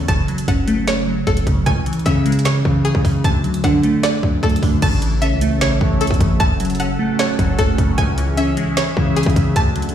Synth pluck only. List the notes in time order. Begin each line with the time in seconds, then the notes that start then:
0.08 A5
0.48 F#5
0.88 C#5
1.27 A4
1.66 G#5
2.06 E5
2.45 C#5
2.85 G#4
3.25 A5
3.64 F#5
4.03 D5
4.43 A4
4.82 A5
5.22 E5
5.61 C#5
6.01 A4
6.40 A5
6.80 F#5
7.19 C#5
7.59 A4
7.98 G#5
8.37 E5
8.77 C#5
9.16 G#4
9.56 A5